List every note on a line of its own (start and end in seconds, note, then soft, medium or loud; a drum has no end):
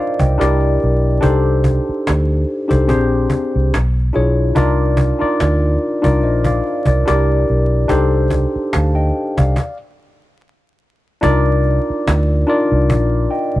0.00 0.38 D4 medium
0.00 0.41 D#4 medium
0.00 0.41 F4 medium
0.00 0.40 A#4 medium
0.00 0.42 C5 medium
0.00 0.41 D5 medium
0.00 0.20 D#5 medium
0.00 0.19 F5 medium
0.00 cajon slap soft
0.19 0.37 C2 medium
0.19 0.60 D#5 soft
0.19 0.59 G5 medium
0.19 cajon bass medium
0.38 0.76 C2 medium
0.38 1.06 D4 medium
0.38 1.07 E4 medium
0.38 1.07 G4 medium
0.38 1.07 A#4 medium
0.38 1.08 D5 medium
0.38 cajon slap medium
0.81 1.18 B1 medium
0.81 cajon slap soft
1.21 1.78 C2 loud
1.21 2.36 D4 medium
1.21 2.37 D#4 medium
1.21 2.37 G4 medium
1.21 2.37 A4 medium
1.21 2.37 C5 loud
1.21 cajon bass medium
1.64 cajon bass medium
1.89 muted fingered electric bass stroke soft
2.07 2.44 D2 medium
2.07 cajon slap loud
2.68 2.90 C2 medium
2.68 2.87 D4 medium
2.68 2.89 D#4 medium
2.68 2.87 G4 medium
2.68 2.89 A4 medium
2.68 2.89 C5 medium
2.68 cajon bass medium
2.88 3.26 A#1 loud
2.88 3.56 C4 medium
2.88 3.57 D4 medium
2.88 3.57 G4 medium
2.88 3.57 G#4 medium
2.88 3.57 C5 medium
2.88 cajon bass medium
3.30 cajon bass medium
3.56 3.71 C2 medium
3.74 4.10 B1 medium
3.74 cajon slap medium
4.13 4.51 B1 medium
4.13 4.47 D4 medium
4.13 4.47 E4 medium
4.13 4.48 F4 medium
4.13 4.48 G#4 medium
4.13 4.48 C#5 medium
4.13 cajon slap soft
4.55 5.12 C2 loud
4.55 5.05 D4 medium
4.55 5.05 D#4 medium
4.55 5.05 F4 medium
4.55 5.06 A#4 medium
4.55 5.06 D5 loud
4.55 cajon bass medium
4.97 cajon bass medium
5.19 5.83 D4 medium
5.19 5.83 D#4 medium
5.19 5.84 F4 medium
5.19 5.84 A#4 medium
5.19 5.84 D5 medium
5.19 muted fingered electric bass stroke soft
5.40 5.76 D2 medium
5.40 cajon slap loud
6.02 6.25 C2 medium
6.02 7.04 D4 medium
6.02 7.06 D#4 medium
6.02 7.06 F4 medium
6.02 6.23 A#4 medium
6.02 6.23 D5 medium
6.02 cajon bass medium
6.21 6.60 A#1 loud
6.21 6.44 C5 soft
6.21 6.44 D#5 medium
6.21 cajon slap soft
6.44 6.85 D5 medium
6.44 6.85 F5 medium
6.44 cajon bass medium
6.67 cajon slap soft
6.86 7.04 C2 medium
6.86 7.06 A#4 soft
6.86 7.07 D5 medium
6.86 cajon bass medium
7.06 7.43 C2 medium
7.06 7.74 D4 medium
7.06 7.74 E4 medium
7.06 7.74 G4 medium
7.06 7.75 A#4 medium
7.06 7.75 D5 medium
7.06 cajon slap medium
7.48 7.85 B1 medium
7.48 cajon slap soft
7.88 8.45 C2 loud
7.88 9.03 D4 loud
7.88 9.03 D#4 medium
7.88 9.04 G4 medium
7.88 9.04 A4 medium
7.88 9.04 C5 loud
7.88 cajon bass medium
8.30 cajon bass medium
8.54 muted fingered electric bass stroke soft
8.54 cajon slap soft
8.73 9.10 D2 medium
8.73 8.94 F5 soft
8.73 8.94 A5 medium
8.73 cajon slap loud
8.95 9.35 D#5 medium
8.95 9.35 G5 medium
9.37 9.55 C2 medium
9.37 9.77 D5 soft
9.37 9.77 F5 medium
9.37 cajon bass medium
9.56 cajon bass loud
9.56 cajon slap medium
11.21 11.78 C2 loud
11.21 12.20 D4 loud
11.21 12.21 D#4 medium
11.21 12.21 F4 medium
11.21 12.21 A#4 medium
11.21 12.22 D5 loud
11.21 cajon bass loud
11.63 cajon slap soft
11.90 muted fingered electric bass stroke soft
12.07 12.43 D2 loud
12.07 cajon slap loud
12.46 13.13 D4 medium
12.46 13.14 D#4 medium
12.46 13.14 F4 medium
12.46 13.14 A#4 medium
12.46 13.15 D5 medium
12.46 cajon slap soft
12.72 12.91 C2 medium
12.72 cajon slap soft
12.90 13.26 A#1 loud
12.90 cajon bass medium
13.31 13.60 D#5 medium
13.31 13.60 G5 medium
13.31 cajon slap soft
13.55 13.60 C2 medium
13.55 cajon slap soft